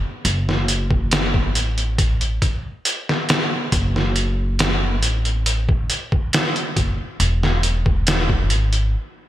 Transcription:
0.25 F#1, closed hi-hat
0.49 snare
0.68 closed hi-hat
0.91 kick
1.11 snare, closed hi-hat
1.34 kick
1.55 A1, closed hi-hat
1.78 closed hi-hat
1.98 kick, closed hi-hat
2.21 closed hi-hat
2.42 kick, closed hi-hat
2.85 closed hi-hat
3.09 snare
3.29 snare, closed hi-hat
3.72 F#1, kick, closed hi-hat
3.96 snare
4.16 closed hi-hat
4.59 snare, closed hi-hat
5.03 A1, closed hi-hat
5.25 closed hi-hat
5.46 closed hi-hat
5.69 kick
5.90 closed hi-hat
6.12 kick
6.33 snare, closed hi-hat
6.56 closed hi-hat
6.76 F#1, kick, closed hi-hat
7.20 E1, closed hi-hat
7.43 snare
7.63 closed hi-hat
7.86 kick
8.07 snare, closed hi-hat
8.29 kick
8.50 G#1, closed hi-hat
8.73 closed hi-hat

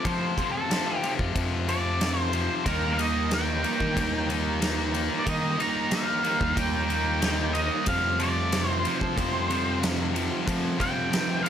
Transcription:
0.04 F2 C3 F3 A3 C4 F4 A4 C5, kick, ride
0.37 F2 C3 F3 A3 C4 F4 A4, kick, ride
0.52 A4
0.69 F2 C3 F3 A3 C4 F4 A4, snare, ride
0.87 C4 F4 A4
0.97 G4
1.02 F2 C3 F3 A3 C4 F4 A4, ride
1.19 F2 C4 F4 A4, kick
1.34 F2 C3 F3, kick, ride
1.51 C4 F4 A4
1.67 F2 C3 F3 A3 C4 F4 A4 D5, ride
2.00 F2 C3 F3 A3 C4 F4 A4, snare, ride
2.16 C4 F4 A4 C5
2.33 F2 C3 F3 C5, muted clean electric guitar stroke, ride
2.49 C4 F4 A4
2.65 D#2 D#3 G3 A#3 D#4 F4 A#4, kick, ride
2.92 F5
2.97 D#3 G3 A#3 D#4 F4 A#4 D#5, ride
3.30 D#3 G3 A#3 D#4 F4 A#4 G5, snare, ride
3.47 G3 F4 A#4
3.62 D#3 G3 A#3 D#4 F4 A#4, ride
3.79 D#3 G3 F4 A#4, kick
3.95 D#2 D#3 A#3 D#4, kick, ride
4.11 G3 F4 A#4
4.27 D#3 G3 A#3 D#4 F4 A#4, ride
4.59 D#3 G3 A#3 D#4 F4 A#4, snare, ride
4.76 G3 F4 A#4
4.93 D#3 A#3 D#4, muted clean electric guitar stroke, ride
5.09 G3 F4 A#4
5.19 D5
5.25 D#3 G3 A#3 D#4 F4 A#4 D#5, kick, ride
5.57 D#3 G3 A#3 D#4 F4 A#4 A#5, ride
5.91 D#3 G3 A#3 D#4 F4 A#4 F5, snare, ride
6.08 G3 F4 A#4
6.23 D#3 G3 A#3 D#4 F4 A#4, ride
6.40 D#2 G3 F4 A#4, kick
6.56 D#2 D#3 A#3 D#4 G5, kick, ride
6.73 G3 F4 A#4
6.88 D#3 G3 A#3 D#4 F4 A#4, ride
7.21 D#3 G3 A#3 D#4 F4 A#4, snare, ride
7.39 G3 F4 A#4
7.53 D#3 A#3 D#4 D#5, muted clean electric guitar stroke, ride
7.71 G3 F4 A#4
7.85 F2 C3 F3 G3 A3 F4 F5, kick, ride
7.90 C5
8.19 F2 C3 F3 G3 A3 F4 C5 D5, ride
8.52 F2 C3 F3 G3 A3 F4 C5, snare, ride
8.68 G3 F4 C5
8.84 F2 C3 F3 G3 A3 F4 C5, ride
9.01 F3 G3 F4 C5, kick
9.16 F2 C3 F3, kick, ride
9.33 G3 F4 C5
9.48 F2 C3 F3 G3 A3 F4 C5, ride
9.81 F2 C3 F3 G3 A3 F4 C5, snare, ride
9.99 G3 F4 C5
10.13 F2 C3 F3, muted clean electric guitar stroke, ride
10.31 G3 F4 C5
10.45 F2 C3 F3 G3 A3 F4 C5, kick, ride
10.78 F2 C3 F3 G3 A3 F4 C5 G5, kick, ride
11.10 F2 C3 F3 G3 A3 F4 C5, snare, ride
11.27 G3 F4 C5
11.43 F2 C3 F3 G3 A3 F4 C5 F5, ride

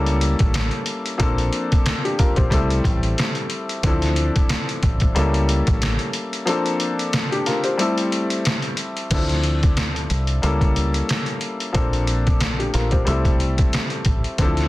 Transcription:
Already playing: C#2 G3 A#3 C#4 E4 A4
0.06 closed hi-hat
0.21 closed hi-hat
0.39 A1, kick, closed hi-hat
0.54 snare, closed hi-hat
0.71 closed hi-hat
0.86 closed hi-hat
1.06 closed hi-hat
1.18 A#1 F3 A#3 C4 D4 A4, kick, closed hi-hat
1.38 closed hi-hat
1.53 closed hi-hat
1.72 kick, closed hi-hat
1.86 snare, closed hi-hat
2.05 D4 G4, closed hi-hat
2.19 F4 A#4, kick, closed hi-hat
2.36 A#1 G4 C5, kick, closed hi-hat
2.50 C2 G3 A3 C4 E4 A4, kick, closed hi-hat
2.70 closed hi-hat
2.84 A1, kick, closed hi-hat
3.03 closed hi-hat
3.18 snare, closed hi-hat
3.35 closed hi-hat
3.50 closed hi-hat
3.69 closed hi-hat
3.83 D2 E3 C4 D4 E4 A4, kick, closed hi-hat
3.90 F3
4.02 snare, closed hi-hat
4.16 closed hi-hat
4.36 kick, closed hi-hat
4.49 snare, closed hi-hat
4.69 closed hi-hat
4.83 A1, kick, closed hi-hat
5.00 kick, closed hi-hat
5.15 C#2 G3 A#3 C#4 E4 A4, closed hi-hat
5.34 closed hi-hat
5.49 closed hi-hat
5.67 A1, kick, closed hi-hat
5.82 snare, closed hi-hat
5.99 closed hi-hat
6.13 closed hi-hat
6.33 closed hi-hat
6.45 F3 A#3 C4 D4 A4, closed hi-hat
6.66 closed hi-hat
6.80 closed hi-hat
6.99 closed hi-hat
7.13 snare, closed hi-hat
7.32 D4 G4, closed hi-hat
7.46 F4 A#4, snare, closed hi-hat
7.64 G4 C5, closed hi-hat
7.77 G3 A3 C4 E4 A4, closed hi-hat
7.98 closed hi-hat
8.12 closed hi-hat
8.30 closed hi-hat
8.45 snare, closed hi-hat
8.62 closed hi-hat
8.77 closed hi-hat
8.97 closed hi-hat
9.11 D2 E3 C4 D4 E4 A4, kick, closed hi-hat, crash
9.18 F3
9.29 snare, closed hi-hat
9.43 closed hi-hat
9.63 kick, closed hi-hat
9.77 snare, closed hi-hat
9.96 closed hi-hat
10.10 C2, closed hi-hat
10.27 closed hi-hat
10.42 C#2 G3 A#3 C#4 E4 A4, closed hi-hat
10.61 kick, closed hi-hat
10.76 closed hi-hat
10.94 closed hi-hat
11.09 snare, closed hi-hat
11.26 closed hi-hat
11.41 closed hi-hat
11.60 closed hi-hat
11.73 A#1 F3 A#3 C4 D4 A4, kick, closed hi-hat
11.93 closed hi-hat
12.07 closed hi-hat
12.27 kick, closed hi-hat
12.40 snare, closed hi-hat
12.59 D4 G4, closed hi-hat
12.74 A#1 F4 A#4, snare, closed hi-hat
12.91 G4 C5, kick, closed hi-hat
13.05 C2 G3 A3 C4 E4 A4, closed hi-hat
13.25 kick, closed hi-hat
13.40 closed hi-hat
13.58 kick, closed hi-hat
13.73 snare, closed hi-hat
13.90 closed hi-hat
14.05 A1, kick, closed hi-hat
14.24 closed hi-hat
14.38 D2 E3 C4 D4 E4 A4, kick, closed hi-hat
14.45 F3
14.57 snare, closed hi-hat

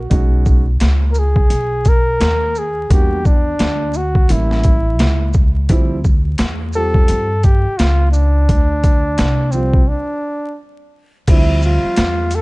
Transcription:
Already playing: F#4
0.10 B1 G#3 C#4 D#4 F#4, kick, closed hi-hat
0.46 kick, shaker
0.80 C#2, snare, closed hi-hat
1.12 A#4, shaker
1.19 G#4
1.36 kick
1.50 B1, closed hi-hat
1.85 A#4, kick, closed hi-hat, shaker
2.20 D#2, snare, closed hi-hat
2.55 G#4, shaker
2.90 E2 G3 A#3 D4 F#4 G4, kick, closed hi-hat
3.25 D4, kick, shaker
3.59 D2, snare, closed hi-hat
3.94 F#4, shaker
4.15 kick
4.29 A1 G3 A#3 C#4 E4, closed hi-hat
4.51 snare
4.63 kick, closed hi-hat, shaker
4.99 C#2, snare, closed hi-hat
5.33 kick, shaker
5.69 D2 F3 G3 C4 E4, kick, closed hi-hat
6.04 kick, shaker
6.38 E2, snare, closed hi-hat
6.73 G3 C4 F4 G4 A4, shaker
6.94 kick
7.08 G2, closed hi-hat
7.43 G4, kick, closed hi-hat, shaker
7.65 muted upright bass stroke
7.78 C#2 F4, snare, closed hi-hat
8.12 D4, shaker
8.49 D2, kick, closed hi-hat
8.84 kick, closed hi-hat, shaker
9.18 C2, snare, closed hi-hat
9.51 F3 G3 C4 F4, shaker
9.73 kick
9.88 D4
11.27 D2 F3 G3 C4 D4 E4, kick, closed hi-hat, crash
11.36 E5
11.62 F4, shaker
11.84 muted upright bass stroke
11.96 E2, snare, closed hi-hat
12.31 closed hi-hat, shaker
12.35 A4

